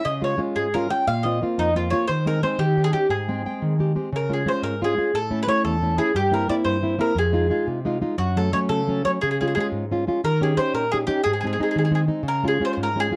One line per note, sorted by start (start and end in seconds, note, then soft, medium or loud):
0.05 0.39 C#3 medium
0.05 0.22 D#5 medium
0.22 0.37 G#3 soft
0.22 0.37 C#4 soft
0.22 0.38 F4 soft
0.22 0.39 C#5 medium
0.38 0.66 G#3 soft
0.38 0.67 C#4 soft
0.38 0.67 F4 soft
0.56 0.89 G#2 medium
0.56 0.73 G#4 medium
0.74 0.89 G#3 soft
0.74 0.90 C#4 soft
0.74 0.90 F4 soft
0.74 0.89 A#4 medium
0.90 1.03 G#3 soft
0.90 1.04 C#4 soft
0.90 1.04 F4 soft
0.90 1.06 G5 medium
1.07 1.41 A#2 medium
1.07 1.24 F5 medium
1.23 1.41 A#3 soft
1.23 1.41 C4 soft
1.23 1.41 F4 soft
1.23 1.39 D#5 medium
1.42 1.69 A#3 soft
1.42 1.69 C4 soft
1.42 1.69 F4 medium
1.58 1.91 F2 medium
1.58 1.75 D#4 medium
1.76 1.91 A#3 soft
1.76 1.91 C4 soft
1.76 1.91 F4 soft
1.76 1.93 F4 medium
1.90 2.05 A#3 soft
1.90 2.05 C4 soft
1.90 2.06 F4 soft
1.90 2.07 C#5 medium
2.08 2.42 D#3 medium
2.08 2.25 C5 medium
2.26 2.42 G#3 soft
2.26 2.42 C4 soft
2.26 2.43 D#4 medium
2.26 2.42 A#4 medium
2.43 2.56 G#3 soft
2.43 2.56 C4 soft
2.43 2.57 D#4 medium
2.43 2.58 C5 medium
2.59 2.92 D#3 medium
2.59 2.84 G4 medium
2.76 2.91 C#4 soft
2.76 2.92 D#4 soft
2.76 2.92 G4 soft
2.84 2.92 G#4 medium
2.93 3.06 C#4 soft
2.93 3.06 D#4 soft
2.93 3.08 G4 medium
2.93 3.06 G4 soft
3.09 3.43 G#2 medium
3.09 3.75 G#4 medium
3.28 3.44 G#3 soft
3.28 3.44 C4 soft
3.28 3.45 G5 medium
3.46 3.73 G#3 soft
3.46 3.73 C4 soft
3.46 3.73 G5 soft
3.62 3.95 D#3 medium
3.79 3.94 G#3 soft
3.79 3.95 C4 soft
3.79 3.95 G4 soft
3.96 4.09 G#3 soft
3.96 4.09 C4 soft
3.96 4.09 G4 soft
4.12 4.46 C#3 medium
4.12 4.31 A#4 medium
4.29 4.45 G#3 soft
4.29 4.45 C#4 soft
4.29 4.45 F4 medium
4.33 4.49 G#4 medium
4.46 4.74 G#3 medium
4.46 4.74 C#4 soft
4.46 4.74 F4 soft
4.46 4.63 C5 medium
4.62 4.96 G#2 medium
4.62 4.80 A#4 medium
4.81 4.96 G#3 soft
4.81 4.97 C#4 soft
4.81 4.97 F4 soft
4.81 5.16 G#4 medium
4.97 5.10 G#3 soft
4.97 5.11 C#4 soft
4.97 5.11 F4 soft
5.14 5.47 A2 medium
5.14 5.39 A4 medium
5.31 5.46 A3 medium
5.31 5.47 C#4 soft
5.31 5.47 E4 medium
5.43 5.48 B4 medium
5.48 5.75 A3 medium
5.48 5.75 C#4 soft
5.48 5.76 E4 medium
5.48 5.63 C#5 medium
5.64 5.98 E2 medium
5.64 5.96 A4 medium
5.82 5.96 A3 soft
5.82 5.96 C#4 soft
5.82 5.96 E4 soft
5.97 6.11 A3 soft
5.97 6.11 C#4 soft
5.97 6.11 E4 soft
5.97 6.15 G#4 medium
6.15 6.48 G2 medium
6.15 6.32 G4 medium
6.31 6.47 A#3 soft
6.31 6.48 C4 soft
6.31 6.48 E4 soft
6.31 6.48 A#4 medium
6.48 6.76 A#3 soft
6.48 6.77 C4 soft
6.48 6.77 E4 medium
6.48 6.54 D5 medium
6.65 6.98 G2 medium
6.65 6.97 C5 medium
6.82 6.97 A#3 soft
6.82 6.97 C4 soft
6.82 6.98 E4 soft
6.98 7.12 A#3 soft
6.98 7.12 C4 soft
6.98 7.13 E4 soft
6.98 7.16 A#4 medium
7.15 7.49 F2 medium
7.15 7.65 G#4 medium
7.32 7.49 G#3 soft
7.32 7.49 D#4 soft
7.32 7.50 F4 medium
7.50 7.78 G#3 medium
7.50 7.78 D#4 soft
7.50 7.79 F4 soft
7.67 8.01 C3 medium
7.85 8.00 G#3 soft
7.85 8.00 D#4 soft
7.85 8.01 F4 soft
8.01 8.15 G#3 soft
8.01 8.15 D#4 soft
8.01 8.15 F4 soft
8.18 8.52 F#2 medium
8.18 8.37 F#4 medium
8.36 8.52 F#3 soft
8.36 8.53 A3 soft
8.36 8.53 C#4 soft
8.36 8.52 A4 medium
8.53 8.81 F#3 soft
8.53 8.81 A3 soft
8.53 8.81 C#4 soft
8.53 8.58 C#5 medium
8.69 9.03 C#3 medium
8.69 9.01 A4 medium
8.88 9.04 F#3 soft
8.88 9.05 A3 soft
8.88 9.05 C#4 soft
9.05 9.18 F#3 soft
9.05 9.18 A3 soft
9.05 9.18 C#4 soft
9.05 9.10 C#5 medium
9.21 9.55 C#3 medium
9.21 9.28 G#4 medium
9.31 9.37 G#4 medium
9.41 9.55 G#3 soft
9.41 9.57 C#4 soft
9.41 9.57 F4 medium
9.41 9.45 G#4 medium
9.47 9.52 G#4 soft
9.55 9.83 G#3 medium
9.55 9.84 C#4 soft
9.55 9.85 F4 medium
9.55 9.59 G#4 medium
9.60 9.66 G#4 medium
9.72 10.05 G#2 medium
9.91 10.06 G#3 soft
9.91 10.06 C#4 soft
9.91 10.07 F4 medium
10.07 10.20 G#3 soft
10.07 10.20 C#4 soft
10.07 10.20 F4 medium
10.24 10.56 D#3 medium
10.24 10.40 A#4 medium
10.41 10.56 C#4 medium
10.41 10.57 D#4 soft
10.41 10.57 G4 medium
10.41 10.58 G#4 medium
10.57 10.84 C#4 medium
10.57 10.85 D#4 soft
10.57 10.85 G4 medium
10.57 10.72 C5 medium
10.74 11.06 A#2 medium
10.74 10.90 A#4 medium
10.92 11.06 C#4 medium
10.92 11.07 D#4 soft
10.92 11.07 G4 medium
10.92 10.97 G#4 medium
11.07 11.20 C#4 soft
11.07 11.20 D#4 soft
11.07 11.22 G4 medium
11.07 11.20 G4 medium
11.24 11.57 G#2 medium
11.24 11.30 G#4 medium
11.33 11.39 G#4 medium
11.41 11.58 G#3 soft
11.41 11.58 C4 soft
11.41 11.59 D#4 medium
11.41 11.46 G#4 medium
11.47 11.52 G#4 soft
11.53 11.59 G#4 medium
11.59 11.86 G#3 medium
11.59 11.86 C4 soft
11.59 11.87 D#4 medium
11.59 11.68 G#4 soft
11.71 11.76 G#4 soft
11.76 12.08 D#3 medium
11.76 11.84 G#4 soft
11.85 11.91 G#4 medium
11.91 12.06 G#3 soft
11.91 12.07 C4 soft
11.91 12.07 D#4 soft
11.91 12.00 G#4 medium
12.07 12.21 G#3 soft
12.07 12.21 C4 soft
12.07 12.21 D#4 medium
12.23 12.58 C#3 medium
12.28 12.43 A#4 medium
12.43 12.59 G#3 soft
12.43 12.60 C#4 soft
12.43 12.60 F4 soft
12.48 12.62 G#4 medium
12.60 12.88 G#3 soft
12.60 12.88 C#4 soft
12.60 12.88 F4 medium
12.65 12.72 C5 medium
12.73 13.10 G#2 medium
12.73 12.77 C5 medium
12.83 12.98 A#4 medium
12.96 13.10 G#3 soft
12.96 13.11 C#4 soft
12.96 13.11 F4 medium
13.00 13.16 G#4 medium
13.11 13.16 G#3 soft
13.11 13.16 C#4 soft
13.11 13.16 F4 medium